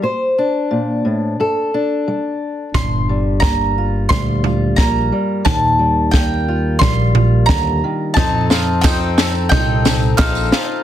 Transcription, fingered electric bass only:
\new Staff \with { instrumentName = "Fingered electric bass" } { \clef bass \time 4/4 \key g \minor \tempo 4 = 88 r1 | g,,2 d,4 bes,,8 r8 | ees,2 bes,,4 ees,8 r8 | f,2 c,4 bes,,8 r8 | }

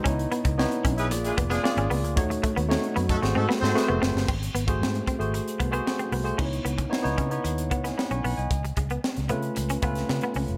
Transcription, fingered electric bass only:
\new Staff \with { instrumentName = "Fingered electric bass" } { \clef bass \time 4/4 \key gis \phrygian \tempo 4 = 114 cis,8 r16 cis,8 r16 b,,8 ais,,8 eis,,8 r16 gis,,16 cis,16 d,16 | dis,8 r16 dis,8 r16 fis,8 gis,,16 gis,16 r16 gis,16 r16 eis,,16 fis,,16 g,,16 | gis,,8 gis,,8 gis,8 r16 gis,,8 r16 bis,,8 r8 bis,,8 | cis,8 cis,8 r16 cis,16 cis8 dis,8 cis,8 r16 b,,16 b,,16 bis,,16 |
cis,8 cis,8 r16 cis,16 cis8 cis,8 cis,8 cis16 r16 cis,16 eis,,16 | }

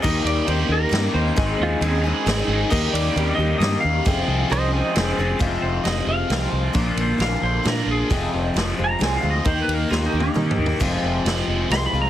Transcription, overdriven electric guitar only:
\new Staff \with { instrumentName = "Overdriven electric guitar" } { \time 3/4 \key f \dorian \tempo 4 = 134 <ees g bes ees' g'>8 <bes ees' g'>8 <ees g bes ees' g'>8 <bes ees' g'>8 <g bes ees' g'>8 <ees g bes ees' g'>8 | <aes, ees aes c' ees' aes'>8 <aes c' ees' aes'>8 <aes, ees aes c' ees' aes'>8 <aes c' ees' aes'>8 <aes c' ees' aes'>8 <aes, ees aes c' ees' aes'>8 | <ees g bes ees' g'>8 <bes ees' g'>8 <ees g bes ees' g'>8 <bes ees' g'>8 <g bes ees' g'>8 <ees g bes ees' g'>8 | <f c' f' aes'>8 <c' f' aes'>8 <f c' f' aes'>8 <c' f' aes'>8 <f c' f' aes'>8 <f c' f' aes'>8 |
f,8 c8 f8 aes8 c'8 f'8 | bes,8 d8 d8 bes8 d'8 f'8 | f,8 c8 f8 aes8 c'8 f'8 | ees8 bes8 ees8 bes8 ees'8 g'8 |
f,8 c8 f8 aes8 c'8 f'8 | }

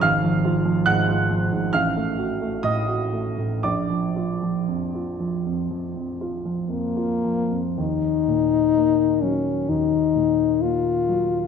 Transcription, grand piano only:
<<
  \new Staff \with { instrumentName = "Grand piano" } { \time 4/4 \key bes \phrygian \tempo 4 = 63 <f'' f'''>4 <ges'' ges'''>4 <f'' f'''>4 <ees'' ees'''>4 | <d'' d'''>2.~ <d'' d'''>8 r8 | r1 | }
  \new Staff \with { instrumentName = "Grand piano" } { \clef bass \time 4/4 \key bes \phrygian aes,,16 f16 f'16 f16 aes,16 f'16 f16 aes,16 a,,16 a16 ges'16 a16 a,16 ges'16 a16 a,16 | bes,,16 f16 f'16 f16 f,16 f'16 f16 f,16 f16 f,16 f'16 f16 f,16 f'16 f16 f,16 | ees,8 bes,8 bes8 ges8 ees,8 bes,8 bes8 ges8 | }
>>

